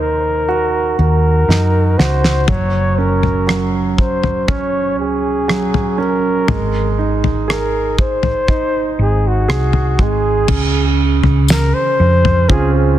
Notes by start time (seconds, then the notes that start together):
Already playing: D#2 D#3 A#3 D#4
0.00 A#4
0.49 F#4
0.99 D#2 A#4
1.48 F#2 D#4, snare
1.98 C#2 F#4 C5, snare
2.24 snare
2.48 F#1 F#3 C#5, kick, floor tom
2.98 C#4 A#4
3.23 floor tom
3.47 F#3, cross-stick
3.98 C5, kick
4.23 floor tom
4.48 C#4 C#5, kick, floor tom
4.98 C#2 G#4
5.48 F#3, cross-stick
5.74 floor tom
5.98 C#4 A#4
6.48 G#1 G#3, floor tom
6.98 D#4
7.24 floor tom
7.48 G#4 A#4, cross-stick
7.98 C5, kick
8.23 floor tom
8.48 D#4, kick
8.99 G#1 G#4
9.27 F#4
9.48 C2 G#4, cross-stick
9.73 floor tom
9.99 G#1 G#3, kick
10.03 G#4
10.48 C#2 C#3, kick, floor tom, crash
11.23 C#2, floor tom
11.48 A#4, snare, tambourine
11.74 C5
12.00 F2
12.25 floor tom
12.49 C#2 C4 C#4 F4 G#4, kick
12.75 G#4